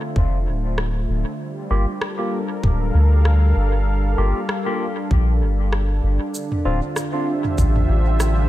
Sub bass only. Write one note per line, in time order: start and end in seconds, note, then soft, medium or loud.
0.16 0.48 F1 medium
0.47 1.06 D1 medium
1.09 1.24 D1 medium
1.71 1.86 G1 medium
2.63 2.91 D1 medium
2.94 3.54 D2 medium
3.56 4.16 G1 loud
4.18 4.33 G1 medium
5.11 5.43 A#1 medium
5.42 6.01 G1 medium
6.03 6.19 G1 medium
6.65 6.81 D1 medium
7.58 7.86 A1 medium
7.89 8.48 A1 medium